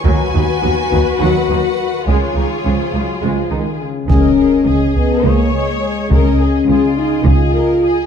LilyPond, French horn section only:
\new Staff \with { instrumentName = "French horn section" } { \time 7/8 \key des \mixolydian \tempo 4 = 104 << { ges'2.~ ges'8 | f'4 f8 ges8 f8 ees8 des8 | des'4. ces'8 bes8 aes4 | des'4. ees'8 f'4. | } \\ { ees2.~ ees8~ | ees4 r2 r8 | r2. r8 | r2. r8 | } >> }